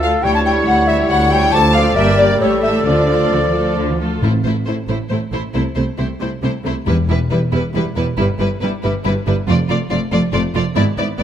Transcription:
Already playing: double bass section D2, cello section D2, bassoon A3, clarinet F4, oboe A4
0.02 viola section A3 F4, violin section A4 F5, flute F5
0.23 double bass section D2, cello section D2, timpani D3, viola section G3 E4, bassoon G3, clarinet E4, oboe C#5, violin section C#5 G5, flute G5
0.34 flute A5, violin section A5
0.45 viola section G3 E4, violin section C#5 G5, flute G5
0.67 double bass section D2, cello section D2, violin section F#5, flute F#5
0.87 viola section G3 E4, violin section C#5 E5, flute E5
1.10 double bass section D2, cello section D2, violin section F#5, flute F#5
1.30 viola section G3 E4, violin section C#5 G5, flute G5
1.52 double bass section D2, cello section D2, bassoon F3, clarinet A4, oboe D5, flute A5, violin section A5
1.74 viola section F3 F4, violin section D5 F5, flute F5
1.95 double bass section G1, cello section G2, bassoon G3, viola section A#3 G4, clarinet A#4, violin section D5 E5, flute E5
2.18 viola section A#3 G4, flute D5, violin section D5
2.39 double bass section A1, cello section A2, viola section A3 G4, clarinet A4, violin section A4 C#5, flute C#5, oboe E5
2.62 viola section A3 G4, violin section A4 E5, flute E5
2.84 double bass section D2, cello section D3, bassoon F3, viola section A3 F4, violin section A4 D5, oboe D5, flute D5
3.08 viola section A3 F4, violin section A4
3.30 double bass section D2, cello section D3
3.44 cello section E3
3.54 cello section F3, viola section A3 F4, violin section A4
3.76 double bass section D2, cello section D3
3.89 cello section E3
4.00 cello section F3, viola section A3 F4, violin section A4
4.21 double bass section A1, timpani A2, cello section A2, viola section A3, violin section E4 C5
4.43 double bass section A1, cello section A2, viola section A3, violin section E4 C5
4.65 double bass section A1, cello section A2, viola section A3, violin section E4 C5
4.87 double bass section A1, cello section A2, viola section A3, violin section E4 C5
5.10 double bass section A1, cello section A2, viola section A3, violin section E4 C5
5.32 double bass section A1, cello section A2, viola section A3, violin section E4 C5
5.54 double bass section C2, cello section C3, viola section A3, violin section E4 C5
5.76 double bass section C2, cello section C3, viola section A3, violin section E4 C5
5.98 double bass section C2, cello section C3, viola section A3, violin section E4 C5
6.20 double bass section C2, cello section C3, viola section A3, violin section E4 C5
6.42 double bass section C2, cello section C3, viola section A3, violin section E4 C5
6.64 double bass section C2, cello section C3, viola section A3, violin section E4 C5
6.86 double bass section E1, cello section E2, timpani E2, viola section G3, violin section E4 B4
7.09 double bass section E1, cello section E2, viola section G3, violin section E4 B4
7.30 double bass section E1, cello section E2, viola section G3, violin section E4 B4
7.52 double bass section E1, cello section E2, viola section G3, violin section E4 B4
7.74 double bass section E1, cello section E2, viola section G3, violin section E4 B4
7.96 double bass section E1, cello section E2, viola section G3, violin section E4 B4
8.17 double bass section G1, cello section G2, viola section G3, violin section E4 B4
8.39 double bass section G1, cello section G2, viola section G3, violin section E4 B4
8.61 double bass section G1, cello section G2, viola section G3, violin section E4 B4
8.83 double bass section G1, cello section G2, viola section G3, violin section E4 B4
9.04 double bass section G1, cello section G2, viola section G3, violin section E4 B4
9.27 double bass section G1, cello section G2, viola section G3, violin section E4 B4
9.48 double bass section F1, cello section F2, viola section A3, violin section F4 D5
9.68 double bass section F1, cello section F2, viola section A3, violin section F4 D5
9.90 double bass section F1, cello section F2, viola section A3, violin section F4 D5
10.12 double bass section F1, cello section F2, viola section A3, violin section F4 D5
10.32 double bass section F1, cello section F2, viola section A3, violin section F4 D5
10.54 double bass section F1, cello section F2, viola section A3, violin section F4 D5
10.75 double bass section G#1, cello section G#2, viola section B3, violin section E4 D5
10.97 double bass section G#1, cello section G#2, viola section B3, violin section E4 D5
11.18 cello section G#2, viola section B3, violin section E4 D5

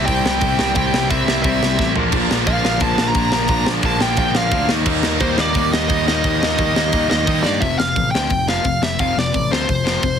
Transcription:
Already playing: distorted electric guitar C3 G3 C4 E4 G4
0.06 picked electric bass C2, distorted electric guitar C3 G3 C4 E4, lead electric guitar G5, kick, open hi-hat
0.25 picked electric bass C2, snare
0.41 picked electric bass C2, distorted electric guitar C3 G3 C4 E4, kick, open hi-hat
0.59 picked electric bass C2, distorted electric guitar C3 G3 C4 E4, snare
0.75 picked electric bass C2, distorted electric guitar C3 G3 C4 E4 G4, lead electric guitar G5, kick, open hi-hat
0.94 picked electric bass C2, snare
1.10 picked electric bass C2, distorted electric guitar C3 G3 C4 E4, lead electric guitar E5, kick, open hi-hat
1.27 picked electric bass C2, distorted electric guitar C3 G3 C4 E4 G4, snare
1.43 picked electric bass C2, distorted electric guitar C3 G3 C4 E4, lead electric guitar E5, kick, open hi-hat
1.62 picked electric bass C2, snare
1.79 picked electric bass A1, distorted electric guitar C3 G3 C4 E4, kick, snare
1.95 picked electric bass A#1, distorted electric guitar A#2 D3 F3 A#3 D4, floor tom
2.12 picked electric bass A#1, distorted electric guitar A#2 D3 F3 A#3 D4, kick, crash
2.30 picked electric bass A#1, snare
2.47 picked electric bass A#1, distorted electric guitar A#2 D3 F3 A#3 D4, lead electric guitar F5, kick, open hi-hat
2.64 picked electric bass A#1, distorted electric guitar A#2 D3 F3 A#3 D4, snare
2.80 picked electric bass A#1, distorted electric guitar A#2 D3 F3 A#3 D4, lead electric guitar A5, kick, open hi-hat
2.98 picked electric bass A#1, snare
3.08 lead electric guitar A#5
3.15 picked electric bass A#1, distorted electric guitar A#2 D3 F3 A#3 D4, kick, open hi-hat
3.31 picked electric bass A#1, distorted electric guitar A#2 D3 F3 A#3 D4, lead electric guitar A#5, snare
3.48 picked electric bass A#1, distorted electric guitar A#2 D3 F3 A#3 D4, kick, open hi-hat
3.67 picked electric bass A#1, snare
3.83 picked electric bass A#1, distorted electric guitar A#2 D3 F3 A#3 D4, lead electric guitar A5, kick, open hi-hat
4.00 picked electric bass A#1, distorted electric guitar A#2 D3 F3 A#3 D4, lead electric guitar G5, snare
4.17 picked electric bass A#1, distorted electric guitar A#2 D3 F3 A#3 D4, lead electric guitar G5, kick, open hi-hat
4.34 picked electric bass A#1, lead electric guitar F5, snare
4.51 picked electric bass D2, distorted electric guitar A#2 D3 F3 A#3 D4, kick, open hi-hat
4.69 picked electric bass D#2, distorted electric guitar D#3 G3 A#3 D#4, snare
4.86 picked electric bass D#2, distorted electric guitar D#3 G3 A#3 D#4, kick, crash
5.03 picked electric bass D#2, snare
5.20 picked electric bass D#2, distorted electric guitar D#3 G3 A#3 D#4, lead electric guitar C5, kick, open hi-hat
5.37 picked electric bass D#2, distorted electric guitar D#3 G3 A#3 D#4, lead electric guitar D5, snare
5.53 picked electric bass D#2, distorted electric guitar D#3 G3 A#3 D#4, kick, open hi-hat
5.73 picked electric bass D#2, lead electric guitar D#5, snare
5.88 picked electric bass D#2, distorted electric guitar D#3 G3 A#3 D#4, kick, open hi-hat
6.06 picked electric bass D#2, distorted electric guitar D#3 G3 A#3 D#4, lead electric guitar D#5, snare
6.23 picked electric bass D#2, distorted electric guitar D#3 G3 A#3 D#4, kick, open hi-hat
6.43 picked electric bass D#2, snare
6.58 picked electric bass D#2, distorted electric guitar D#3 G3 A#3 D#4, kick, open hi-hat
6.74 picked electric bass D#2, distorted electric guitar D#3 G3 A#3 D#4, snare
6.92 picked electric bass D#2, distorted electric guitar D#3 G3 A#3 D#4, kick, open hi-hat
7.10 picked electric bass D#2, lead electric guitar D#5, snare
7.27 picked electric bass D#2, distorted electric guitar D#3 G3 A#3 D#4, kick, open hi-hat
7.43 picked electric bass G2, distorted electric guitar D#3 G3 A#3 D#4, lead electric guitar D5, snare
7.61 picked electric bass F1, overdriven electric guitar F2 C3 F3, lead electric guitar E5, kick, open hi-hat
7.78 picked electric bass F1, overdriven electric guitar F2 C3, lead electric guitar F5, snare
7.96 picked electric bass A1, overdriven electric guitar F2 C3, kick, open hi-hat
8.11 picked electric bass D2, overdriven electric guitar F2 C3, lead electric guitar G5
8.15 overdriven electric guitar F3, snare
8.30 picked electric bass F1, overdriven electric guitar F2 C3, kick, open hi-hat
8.48 overdriven electric guitar F2 C3 F3, lead electric guitar F5, snare
8.64 picked electric bass F1, overdriven electric guitar F2 C3, kick, open hi-hat
8.80 picked electric bass F1, overdriven electric guitar F2 C3, lead electric guitar E5, snare
8.99 picked electric bass F1, overdriven electric guitar F2 C3 F3, lead electric guitar F5, kick, open hi-hat
9.16 picked electric bass F1, overdriven electric guitar F2 C3, lead electric guitar D5, snare
9.33 picked electric bass A1, overdriven electric guitar F2 C3, kick, open hi-hat
9.51 picked electric bass D2, overdriven electric guitar F2 C3 F3, lead electric guitar C5, snare
9.68 picked electric bass F1, overdriven electric guitar F2 C3, kick, open hi-hat
9.84 overdriven electric guitar F2 C3 F3, snare
10.03 picked electric bass F1, overdriven electric guitar F2 C3, kick, open hi-hat

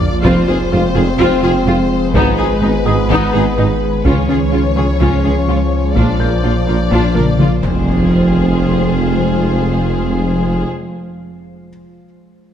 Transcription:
Already playing: sub bass A#1, ambient pad F3 A#3 F4 D5, violin section D5, felt piano G#6
0.01 taiko low
0.23 sub bass F1, tuba F1, double bass section F1, cello section F2, synth pluck F3, ambient pad G#3 C5, french horn section G#3 C4, violin section C4 C5, viola section F4, taiko
0.47 double bass section F1, tuba F1, cello section F2, viola section F4, synth pluck F4, violin section G#4
0.72 tuba F1, double bass section F1, cello section F2, synth pluck G#3, viola section F4, violin section F4
0.95 tuba F1, double bass section F1, cello section F2, viola section F4, synth pluck F4, violin section G#4
1.19 tuba F1, double bass section F1, cello section F2, synth pluck F3, violin section C4, viola section F4, taiko
1.43 double bass section F1, tuba F1, cello section F2, viola section F4, synth pluck F4, violin section G#4
1.66 double bass section F1, tuba F1, cello section F2, synth pluck C4, violin section F4, viola section F4
2.14 sub bass G#1, double bass section G#1, tuba G#1, cello section G#2, ambient pad D#3 G#4 B4, synth pluck G#3, violin section B3 B4, french horn section B3, viola section D#4, taiko
2.38 double bass section G#1, tuba G#1, cello section G#2, viola section D#4, synth pluck G#4, violin section G#4
2.62 double bass section G#1, tuba G#1, cello section G#2, synth pluck B3, viola section D#4, violin section D#4
2.86 double bass section G#1, tuba G#1, cello section G#2, viola section D#4, synth pluck G#4, violin section G#4, felt piano D#5 D#6
3.10 tuba G#1, double bass section G#1, cello section G#2, synth pluck G#3, violin section B3, viola section D#4, taiko
3.33 tuba G#1, double bass section G#1, cello section G#2, viola section D#4, synth pluck G#4, violin section G#4
3.58 tuba G#1, double bass section G#1, cello section G#2, violin section D#4, synth pluck D#4, viola section D#4
4.05 sub bass C#2, tuba C#2, double bass section C#2, synth pluck C#3, cello section C#3, french horn section F3 C#4, ambient pad F3 C#5, violin section C#4 C#5, viola section F4, taiko
4.29 tuba C#2, double bass section C#2, cello section C#3, synth pluck C#4, viola section F4, violin section G#4
4.52 double bass section C#2, tuba C#2, cello section C#3, synth pluck F3, violin section F4, viola section F4
4.76 tuba C#2, double bass section C#2, cello section C#3, synth pluck C#4, viola section F4, violin section G#4, felt piano C#6
5.00 double bass section C#2, tuba C#2, cello section C#3, synth pluck C#3, violin section C#4, viola section F4, taiko
5.24 tuba C#2, double bass section C#2, cello section C#3, synth pluck C#4, viola section F4, violin section G#4
5.48 tuba C#2, double bass section C#2, cello section C#3, synth pluck G#3, viola section F4, violin section F4
5.96 tuba A#1, sub bass A#1, double bass section A#1, cello section A#2, synth pluck A#3, ambient pad A#3 F4 D5, french horn section D4, violin section D4 D5, viola section F4, taiko
6.19 tuba A#1, double bass section A#1, cello section A#2, viola section F4, synth pluck A#4, violin section A#4, felt piano G6
6.43 tuba A#1, double bass section A#1, cello section A#2, synth pluck D4, viola section F4, violin section F4
6.67 tuba A#1, double bass section A#1, cello section A#2, viola section F4, synth pluck A#4, violin section A#4
6.91 tuba A#1, double bass section A#1, cello section A#2, synth pluck A#3, violin section D4, viola section F4, taiko
7.15 tuba A#1, double bass section A#1, cello section A#2, viola section F4, synth pluck A#4, violin section A#4, taiko mid
7.38 tuba A#1, double bass section A#1, cello section A#2, synth pluck F4, viola section F4, violin section F4, taiko mid
7.62 sub bass F1, tuba F1, double bass section F1, cello section F2, ambient pad F3 G#3 F4 C5, french horn section G#3 C4, viola section F4, violin section G#4 C5, taiko, impact

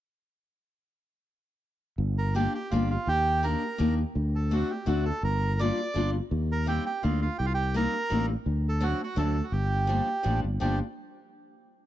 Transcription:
1.98 fretless electric bass G1
2.18 bandoneon A#4
2.35 steel-string acoustic guitar A#3 D4 F4 G4, bandoneon G4
2.55 bandoneon G4
2.71 fretless electric bass G1, steel-string acoustic guitar A#3 D4 F4 G4, bandoneon F4
2.90 bandoneon F4
3.07 fretless electric bass D#2, bandoneon G4
3.43 steel-string acoustic guitar A#3 D4 D#4 G4, bandoneon A#4
3.78 fretless electric bass D#2, steel-string acoustic guitar A#3 D4 D#4 G4
4.15 fretless electric bass D2
4.35 bandoneon A4
4.51 steel-string acoustic guitar A3 C4 D4 F#4, bandoneon F#4
4.71 bandoneon G4
4.86 fretless electric bass D2, steel-string acoustic guitar A3 C4 D4 F#4, bandoneon F#4
5.05 bandoneon A4
5.23 fretless electric bass G1, bandoneon A#4
5.59 steel-string acoustic guitar G3 A#3 D4 F4, bandoneon D5
5.94 fretless electric bass G1, steel-string acoustic guitar G3 A#3 D4 F4
6.31 fretless electric bass D#2
6.52 bandoneon A#4
6.66 steel-string acoustic guitar G3 A#3 C4 D#4, bandoneon G4
6.86 bandoneon G4
7.03 fretless electric bass D2, steel-string acoustic guitar G3 A#3 C4 D#4, bandoneon F4
7.22 bandoneon F4
7.38 fretless electric bass C2, bandoneon G4
7.46 bandoneon F4
7.54 bandoneon G4
7.74 steel-string acoustic guitar G3 A#3 C4 D#4, bandoneon A#4
8.10 fretless electric bass A1, steel-string acoustic guitar G3 A#3 C4 D#4
8.46 fretless electric bass D2
8.69 bandoneon A4
8.81 steel-string acoustic guitar F#3 A3 C4 D4, bandoneon F#4
9.04 bandoneon F#4
9.16 fretless electric bass D2, steel-string acoustic guitar F#3 A3 C4 D4, bandoneon A4
9.44 bandoneon F#4
9.52 fretless electric bass G1, bandoneon G4
9.87 steel-string acoustic guitar F3 G3 A#3 D4
10.23 fretless electric bass A1, steel-string acoustic guitar F3 G3 A#3 D4
10.44 fretless electric bass G1
10.60 fretless electric bass G1, steel-string acoustic guitar F3 G3 A#3 D4, bandoneon G4

